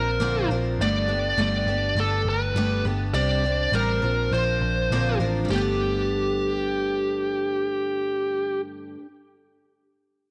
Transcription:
Already playing: picked electric bass A#1, twelve-string acoustic guitar F3 C4 D4 A#4, lead electric guitar A#4
0.20 picked electric bass A#1, twelve-string acoustic guitar A#2 D3 F3 C4 D4 A#4
0.49 picked electric bass A#1, twelve-string acoustic guitar F3 C4 D4 A#4
0.79 picked electric bass G1, twelve-string acoustic guitar G2 D3 A3 B3 D4 G4, lead electric guitar D5
1.08 twelve-string acoustic guitar A3 B3 D4 G4
1.37 picked electric bass G1, twelve-string acoustic guitar G2 D3 A3 B3 D4 G4, lead electric guitar D5
1.66 picked electric bass G1, twelve-string acoustic guitar A3 D4 G4
1.70 twelve-string acoustic guitar B3
1.95 picked electric bass G1, twelve-string acoustic guitar A3 B3 D4 G4
2.00 lead electric guitar A4
2.25 picked electric bass G1
2.29 lead electric guitar B4
2.55 picked electric bass G1, twelve-string acoustic guitar G2 D3 A3 B3 D4 G4
2.85 picked electric bass G1, twelve-string acoustic guitar A3 B3 D4 G4
3.13 picked electric bass C2, twelve-string acoustic guitar C3 G3 C4 D4 G4, lead electric guitar D5
3.44 twelve-string acoustic guitar C4 D4 G4
3.72 picked electric bass A1, twelve-string acoustic guitar C3 G3 C4 D4 G4, lead electric guitar A#4
4.02 picked electric bass A#1, twelve-string acoustic guitar F3 C4 D4 A#4
4.32 picked electric bass A#1, twelve-string acoustic guitar F3 C4 D4 A#4, lead electric guitar C5
4.61 picked electric bass A#1
4.91 picked electric bass A#1, twelve-string acoustic guitar A#2 D3 F3 C4 D4 A#4
5.19 picked electric bass A1, twelve-string acoustic guitar F3 C4 D4 A#4
5.45 twelve-string acoustic guitar G2 D3
5.49 picked electric bass G1, twelve-string acoustic guitar A3 B3, lead electric guitar G4
5.56 twelve-string acoustic guitar D4 G4

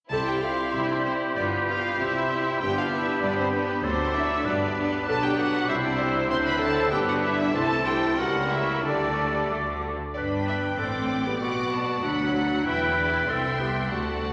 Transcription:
0.09 double bass section C2, cello section C3, bassoon G3, violin section C4 E4 A5, french horn section C4 E4, clarinet E4, oboe G4, viola section A4, flute section C6
0.27 viola section G4, violin section G5
0.42 violin section C4 E4 F5, viola section F4
0.73 double bass section C2, cello section C3, violin section C4 E4 E5, viola section E4
0.90 viola section D4, violin section D5
1.05 violin section C4 E4 C5, viola section C4
1.36 double bass section G1, cello section G2, french horn section B3 F4, violin section B3 F4 D5, viola section D4, clarinet F4, flute section B5
1.68 violin section B3 F4 F5, viola section F4
1.99 double bass section C2, cello section C3, violin section C4 E4 E5, french horn section C4 G4, clarinet E4, viola section E4, flute section C6
2.29 violin section C4 E4
2.61 double bass section G1, cello section G2, bassoon G3, violin section B3 D4 G5, french horn section B3, clarinet D4, oboe G4, viola section G4, flute section B5
2.77 viola section F4, violin section F5
2.90 violin section B3 D4 E5, viola section E4
3.22 double bass section G1, cello section G2, violin section B3 D4 D5, viola section D4
3.38 viola section C4, violin section C5
3.52 violin section B3 D4 B4, viola section B3
3.83 double bass section D2, cello section D2, bassoon F#3, french horn section A3 F#4, violin section A3 D4 C5, viola section C4, oboe A4, flute section D6
4.15 violin section A3 D4 E5, viola section E4
4.45 double bass section G1, cello section G2, bassoon G3, violin section B3 D4 D5, french horn section B3 D4, viola section D4, oboe B4
4.76 violin section B3 D4
5.06 double bass section B1, cello section B2, bassoon F#3, violin section B3 D4 A5, french horn section B3 D4, clarinet D4, viola section A4, oboe B4, flute section D6
5.23 viola section G4, violin section G5
5.38 viola section F#4, violin section F#5
5.68 double bass section C2, cello section C3, bassoon G3, violin section G3 E4 E5, french horn section C4 E4, clarinet C4, viola section E4, oboe C5, flute section E6
5.84 viola section D4, violin section D5
6.00 viola section C4, violin section C5
6.30 double bass section D2, cello section D3, bassoon F#3, violin section C4 E4 C6, clarinet D4, viola section C5, oboe C5, flute section E6
6.46 viola section B4, violin section B5
6.61 viola section A4, violin section A5
6.91 double bass section G1, cello section G2, bassoon G3, violin section B3 D4 G5, french horn section B3 D4, clarinet D4, viola section G4, oboe B4, flute section D6
7.07 viola section F#4, violin section F#5
7.22 viola section E4, violin section E5
7.53 double bass section C2, cello section C3, bassoon E3, french horn section A3 E4, violin section A3 C4 A5, clarinet E4, viola section A4, oboe A4, flute section C6
7.85 viola section G4, violin section G5
8.17 double bass section C#2, cello section C#3, violin section G3 A#3 F#5, bassoon G3, french horn section A#3 G4, clarinet E4, viola section F#4, oboe A#4, flute section C#6
8.51 viola section E4, violin section E5
8.84 double bass section D2, cello section D3, violin section G3 A3 D5, french horn section A3 G4, bassoon A3, viola section D4, clarinet G4, oboe A4, flute section D6
9.50 double bass section D2, cello section D3, bassoon A3, violin section A3, french horn section A3 F#4, clarinet F#4, oboe A4, flute section D6
10.15 double bass section G1, cello section G2, viola section D4, clarinet B4, violin section D5 G5 B5
10.48 violin section E5
10.79 double bass section A1, cello section A2, viola section C4, clarinet A4, violin section D5 D6
11.26 viola section B3, clarinet G4
11.40 double bass section B1, cello section B2, viola section B3, clarinet F#4, violin section F#5 D6
11.72 violin section A5
12.02 cello section D2, double bass section D2, viola section F#3, clarinet D4, violin section F#5 B5
12.35 violin section F#5
12.66 double bass section E1, cello section E2, viola section E4, clarinet B4, violin section E5 G5 B5
12.99 violin section D5
13.28 double bass section C2, cello section C2, viola section C4, clarinet A4, violin section E5 G5 C6
13.59 viola section B3, clarinet G4
13.90 cello section D2, double bass section D2, viola section A3, clarinet F#4, violin section D5 F#5 A5

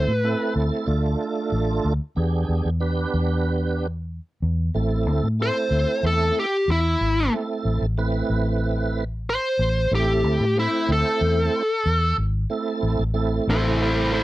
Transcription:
Already playing: tonewheel organ A3 C4 E4 A4, lead electric guitar C5
0.08 fingered electric bass A2, lead electric guitar B4
0.24 tonewheel organ A3 C4 E4 A4
0.56 fingered electric bass D2
0.86 fingered electric bass D2, tonewheel organ A3 D4 F4 A4
1.52 fingered electric bass A1
1.85 fingered electric bass D2
2.16 fingered electric bass E2, tonewheel organ B3 D4 G4 G#4
2.49 fingered electric bass E2
2.65 fingered electric bass E2
2.80 tonewheel organ B3 D4 G4 B4
3.14 fingered electric bass E2
4.42 fingered electric bass E2
4.74 fingered electric bass A1, tonewheel organ A3 C4 E4 A4
5.06 fingered electric bass D2
5.23 fingered electric bass A2
5.39 tonewheel organ A3 C4 E4 A4, lead electric guitar C5
5.71 fingered electric bass D2
6.03 fingered electric bass E2, lead electric guitar A4
6.39 lead electric guitar G4
6.68 fingered electric bass E2, lead electric guitar E4
7.01 fingered electric bass G#1
7.32 tonewheel organ A3 C4 E4 A4
7.65 fingered electric bass A1
7.81 fingered electric bass A1
7.98 tonewheel organ A3 C4 E4 B4
8.30 fingered electric bass A1
9.30 lead electric guitar C5
9.59 fingered electric bass A1
9.91 fingered electric bass A1, tonewheel organ A3 C4 E4 A4, lead electric guitar G4
10.24 fingered electric bass D2
10.40 fingered electric bass A2
10.55 tonewheel organ A3 C4 E4 C5
10.59 lead electric guitar E4
10.89 fingered electric bass D2, lead electric guitar A4
11.21 fingered electric bass E2
11.86 fingered electric bass E2
12.18 fingered electric bass G#1
12.50 tonewheel organ A3 C4 E4 A4
12.83 fingered electric bass A1
12.99 fingered electric bass A1
13.14 tonewheel organ A3 C4 E4 A4
13.48 fingered electric bass A1, lead electric guitar E4 C5
13.82 lead electric guitar E4 C5
14.14 lead electric guitar E4 C5

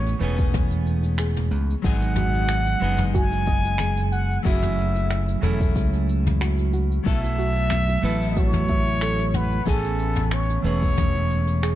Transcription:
Already playing: fingered electric bass A1, clean electric guitar E3 A3 B3 C#4 G#4, muted trumpet C#5
0.06 closed hi-hat, cabasa
0.19 fingered electric bass E1, clean electric guitar E3 A3 B3 C#4, synth pluck B4, cabasa
0.23 clean electric guitar G#4
0.38 kick, closed hi-hat, cabasa
0.53 kick, closed hi-hat, mid tom, cabasa
0.70 closed hi-hat, cabasa
0.86 cabasa
1.03 closed hi-hat, cabasa
1.18 synth pluck G#4, finger snap, closed hi-hat, cabasa
1.36 closed hi-hat, mid tom, cabasa
1.51 fingered electric bass C#2, cabasa
1.70 cabasa
1.82 fingered electric bass G#1, clean electric guitar F#3 G#3 B3 D#4 G#4, muted trumpet F#5, kick, closed hi-hat, cabasa
2.02 closed hi-hat, cabasa
2.16 synth pluck F#4, mid tom, cabasa
2.34 cabasa
2.48 finger snap, closed hi-hat, cabasa
2.66 closed hi-hat, cabasa
2.80 fingered electric bass F#1, clean electric guitar F#3 G#3 B3 D#4, synth pluck B4, cabasa
2.84 clean electric guitar G#4
2.98 closed hi-hat, mid tom, cabasa
3.14 synth pluck F#4, muted trumpet G#5, kick, closed hi-hat, cabasa
3.32 closed hi-hat, cabasa
3.46 synth pluck D#5, kick, cabasa
3.64 closed hi-hat, cabasa
3.78 synth pluck G#4, finger snap, closed hi-hat, mid tom, cabasa
3.97 closed hi-hat, cabasa
4.12 muted trumpet F#5, synth pluck F#5, cabasa
4.30 cabasa
4.43 fingered electric bass F#1, clean electric guitar F#3 A3 C#4 E4 G#4, synth pluck F#4, muted trumpet E5, kick, closed hi-hat, cabasa
4.63 closed hi-hat, mid tom, cabasa
4.78 cabasa
4.95 closed hi-hat, cabasa
5.10 finger snap, closed hi-hat, cabasa
5.28 closed hi-hat, cabasa
5.41 fingered electric bass E1, clean electric guitar F#3 A3 C#4 E4 G#4, synth pluck A4, mid tom, cabasa
5.61 kick, closed hi-hat, cabasa
5.76 fingered electric bass C#2, kick, closed hi-hat, cabasa
5.93 closed hi-hat, cabasa
6.09 cabasa
6.26 closed hi-hat, mid tom, cabasa
6.41 synth pluck F#4, finger snap, closed hi-hat, cabasa
6.58 closed hi-hat, cabasa
6.73 synth pluck F#4, cabasa
6.92 cabasa
7.04 fingered electric bass B1, clean electric guitar F#3 A3 B3 E4 A4, muted trumpet E5, kick, closed hi-hat, cabasa
7.24 closed hi-hat, cabasa
7.39 synth pluck F#4, cabasa
7.56 cabasa
7.70 finger snap, closed hi-hat, mid tom, cabasa
7.88 closed hi-hat, cabasa
8.01 fingered electric bass A1, clean electric guitar F#3 A3 B3 E4 A4, synth pluck B4, cabasa
8.21 closed hi-hat, cabasa
8.31 muted trumpet D#5
8.36 synth pluck F#4, muted trumpet C#5, kick, closed hi-hat, cabasa
8.53 closed hi-hat, mid tom, cabasa
8.68 synth pluck E5, kick, cabasa
8.87 closed hi-hat, cabasa
9.01 synth pluck A4, finger snap, closed hi-hat, cabasa
9.19 closed hi-hat, cabasa
9.34 muted trumpet B4, synth pluck F#5, mid tom, cabasa
9.52 cabasa
9.65 fingered electric bass A1, clean electric guitar E3 A3 B3 C#4 G#5, synth pluck G#4, muted trumpet A4, kick, closed hi-hat, cabasa
9.84 closed hi-hat, cabasa
9.99 cabasa
10.16 mid tom, cabasa
10.31 muted trumpet C#5, finger snap, closed hi-hat, cabasa
10.49 closed hi-hat, cabasa
10.62 fingered electric bass E1, clean electric guitar E3 A3 B3 C#4, synth pluck B4, cabasa
10.66 clean electric guitar G#4, muted trumpet C#5
10.82 kick, closed hi-hat, cabasa
10.96 kick, closed hi-hat, mid tom, cabasa
11.15 closed hi-hat, cabasa
11.30 cabasa
11.47 closed hi-hat, cabasa
11.62 synth pluck G#4, finger snap, closed hi-hat, cabasa

